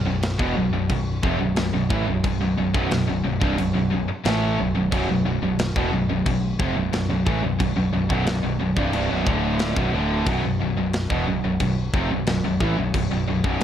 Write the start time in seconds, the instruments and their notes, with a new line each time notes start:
0.05 picked electric bass B0, distorted electric guitar B1 F#2
0.23 snare, crash
0.39 picked electric bass E1, distorted electric guitar E2 B2, kick
0.56 picked electric bass B0, distorted electric guitar B1 F#2
0.72 picked electric bass B0, distorted electric guitar B1 F#2
0.89 picked electric bass B0, distorted electric guitar B1 F#2, kick, crash
1.23 picked electric bass F1, distorted electric guitar F2 C3, kick
1.40 picked electric bass B0, distorted electric guitar B1 F#2
1.56 picked electric bass B0, distorted electric guitar B1 F#2, snare, crash
1.73 picked electric bass B0, distorted electric guitar B1 F#2
1.90 picked electric bass A1, distorted electric guitar A2 E3, kick
2.07 picked electric bass B0, distorted electric guitar B1 F#2
2.24 picked electric bass B0, distorted electric guitar B1 F#2, kick, crash
2.41 picked electric bass B0, distorted electric guitar B1 F#2
2.57 picked electric bass B0, distorted electric guitar B1 F#2
2.74 picked electric bass B0, distorted electric guitar B1 F#2, kick
2.91 picked electric bass B0, distorted electric guitar B1 F#2, snare, crash
3.08 picked electric bass B0, distorted electric guitar B1 F#2
3.25 picked electric bass B0, distorted electric guitar B1 F#2
3.41 picked electric bass C1, distorted electric guitar C2 G2, kick
3.58 picked electric bass B0, distorted electric guitar B1 F#2, crash
3.75 picked electric bass B0, distorted electric guitar B1 F#2
3.92 picked electric bass B0, distorted electric guitar B1 F#2
4.09 muted distorted electric guitar stroke, muted picked electric bass stroke, muted overdriven electric guitar stroke
4.25 picked electric bass A1, distorted electric guitar A2 E3 A3, snare, crash
4.59 picked electric bass B0, distorted electric guitar B1 F#2
4.75 picked electric bass B0, distorted electric guitar B1 F#2
4.92 picked electric bass B0, distorted electric guitar B1 F#2, kick, crash
5.09 picked electric bass B0, distorted electric guitar B1 F#2
5.25 picked electric bass B0, distorted electric guitar B1 F#2
5.42 picked electric bass B0, distorted electric guitar B1 F#2
5.59 snare, crash
5.76 picked electric bass E1, distorted electric guitar E2 B2, kick
5.92 picked electric bass B0, distorted electric guitar B1 F#2
6.09 picked electric bass B0, distorted electric guitar B1 F#2
6.26 picked electric bass B0, distorted electric guitar B1 F#2, kick, crash
6.59 picked electric bass F1, distorted electric guitar F2 C3, kick
6.76 picked electric bass B0, distorted electric guitar B1 F#2
6.93 picked electric bass B0, distorted electric guitar B1 F#2, snare, crash
7.10 picked electric bass B0, distorted electric guitar B1 F#2
7.26 picked electric bass A1, distorted electric guitar A2 E3, kick
7.43 picked electric bass B0, distorted electric guitar B1 F#2
7.59 picked electric bass B0, distorted electric guitar B1 F#2, kick, crash
7.76 picked electric bass B0, distorted electric guitar B1 F#2
7.93 picked electric bass B0, distorted electric guitar B1 F#2
8.10 picked electric bass B0, distorted electric guitar B1 F#2, kick
8.26 picked electric bass B0, distorted electric guitar B1 F#2, snare, crash
8.43 picked electric bass B0, distorted electric guitar B1 F#2
8.60 picked electric bass B0, distorted electric guitar B1 F#2
8.76 picked electric bass C1, distorted electric guitar C2 G2, kick
8.93 picked electric bass C1, distorted electric guitar C2 G2, crash
9.10 picked electric bass B0, distorted electric guitar B1 F#2
9.26 picked electric bass D1, distorted electric guitar D2 A2 D3, kick
9.59 snare, crash
9.76 picked electric bass B0, distorted electric guitar B1 F#2, kick
9.92 picked electric bass D1, distorted electric guitar D2 A2 D3
10.26 picked electric bass B0, distorted electric guitar B1 F#2, kick, crash
10.43 picked electric bass B0, distorted electric guitar B1 F#2
10.60 picked electric bass B0, distorted electric guitar B1 F#2
10.77 picked electric bass B0, distorted electric guitar B1 F#2
10.93 snare, crash
11.10 picked electric bass E1, distorted electric guitar E2 B2, kick
11.27 picked electric bass B0, distorted electric guitar B1 F#2
11.44 picked electric bass B0, distorted electric guitar B1 F#2
11.60 picked electric bass B0, distorted electric guitar B1 F#2, kick, crash
11.93 picked electric bass F1, distorted electric guitar F2 C3, kick
12.11 picked electric bass B0, distorted electric guitar B1 F#2
12.27 picked electric bass B0, distorted electric guitar B1 F#2, snare, crash
12.44 picked electric bass B0, distorted electric guitar B1 F#2
12.60 picked electric bass A1, distorted electric guitar A2 E3, kick
12.78 picked electric bass B0, distorted electric guitar B1 F#2
12.94 picked electric bass B0, distorted electric guitar B1 F#2, kick, crash
13.11 picked electric bass B0, distorted electric guitar B1 F#2
13.28 picked electric bass B0, distorted electric guitar B1 F#2
13.44 picked electric bass B0, distorted electric guitar B1 F#2, kick